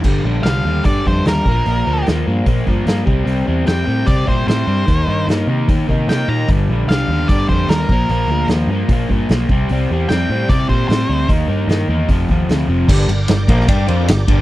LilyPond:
<<
  \new Staff \with { instrumentName = "Lead electric guitar" } { \time 4/4 \key g \minor \tempo 4 = 150 r4 f''4 d''8 c''8 bes'4~ | bes'4 r2. | r4 g''4 d''8 c''8 c''4~ | c''4 r2 g''8 bes''8 |
r4 f''4 d''8 c''8 bes'4~ | bes'4 r2. | r4 g''4 d''8 c''8 c''4 | r1 |
r1 | }
  \new Staff \with { instrumentName = "Tonewheel organ" } { \time 4/4 \key g \minor r1 | r1 | r1 | r1 |
r1 | r1 | r1 | r1 |
<d' g' bes' d''>1 | }
  \new Staff \with { instrumentName = "Overdriven electric guitar" } { \clef bass \time 4/4 \key g \minor <g, d g>8 <g, d g>8 <g, d g>8 <g, d g>8 <g, d g>8 <g, d g>8 <g, d g>8 <bes, f bes>8 | <bes, f bes>8 <bes, f bes>8 <bes, f bes>8 <bes, f bes>8 <bes, f bes>8 <bes, f bes>8 <bes, f bes>8 <c g c'>8 | <c g c'>8 <c g c'>8 <c g c'>8 <c g c'>8 <c g c'>8 <c g c'>8 <c g c'>8 <c g c'>8 | <ees bes ees'>8 <ees bes ees'>8 <ees bes ees'>8 <ees bes ees'>8 <ees bes ees'>8 <ees bes ees'>8 <ees bes ees'>8 <ees bes ees'>8 |
<g, d g>8 <g, d g>8 <g, d g>8 <g, d g>8 <g, d g>8 <g, d g>8 <g, d g>8 <bes, f bes>8 | <bes, f bes>8 <bes, f bes>8 <bes, f bes>8 <bes, f bes>8 <bes, f bes>8 <bes, f bes>8 <bes, f bes>8 <c g c'>8 | <c g c'>8 <c g c'>8 <c g c'>8 <c g c'>8 <c g c'>8 <c g c'>8 <c g c'>8 <c g c'>8 | <ees bes ees'>8 <ees bes ees'>8 <ees bes ees'>8 <ees bes ees'>8 <f, c f>8 <f, c f>8 <f, c f>8 <f, c f>8 |
<g, d g>8 <g, d>8 <g, d>8 <bes, f bes>8 <g d' g'>8 <f c' f'>8 <g, d>8 <g, d g>8 | }
  \new Staff \with { instrumentName = "Picked electric bass" } { \clef bass \time 4/4 \key g \minor g,,8 bes,,8 c,8 ees,8 g,8 f,8 ees,8 bes,,8 | bes,,8 d,8 ees,8 g,8 bes,8 g,8 g,8 c,8 | c,8 e,8 f,8 a,8 c8 bes,8 a,8 g,8 | ees,8 g,8 g,8 c8 ees8 c8 c8 bes,8 |
g,,8 bes,,8 c,8 ees,8 g,8 f,8 ees,8 bes,,8 | bes,,8 d,8 ees,8 g,8 bes,8 g,8 b,,8 c,8 | c,8 e,8 f,8 a,8 c8 bes,8 a,8 d,8 | ees,8 g,8 g,8 e,8 f,,8 ees,8 d,8 f,,8 |
g,,8 g,,8 g,,8 bes,,8 g,8 f,8 g,,8 g,,8 | }
  \new DrumStaff \with { instrumentName = "Drums" } \drummode { \time 4/4 <cymc bd>4 <hho sn>4 <hho bd>8 bd8 <hho sn>8 bd8 | hho4 <hho sn>4 <hho bd>8 bd8 <hho sn>8 bd8 | hho4 <hho sn>4 <hho bd>8 bd8 <hho sn>4 | <hho bd>4 <hho sn>4 <hho bd>8 bd8 <hho sn>4 |
<hho bd>4 <hho sn>4 <hho bd>8 bd8 <hho sn>8 bd8 | hho4 <hho sn>4 <hho bd>8 bd8 <hho sn>8 bd8 | hho4 <hho sn>4 <hho bd>8 bd8 <hho sn>4 | <hho bd>4 <hho sn>4 <hho bd>8 bd8 <hho sn>4 |
<cymc bd>8 cymr8 <cymr sn>8 <bd cymr>16 sn16 <bd cymr>8 cymr8 <cymr sn>8 <bd cymr>8 | }
>>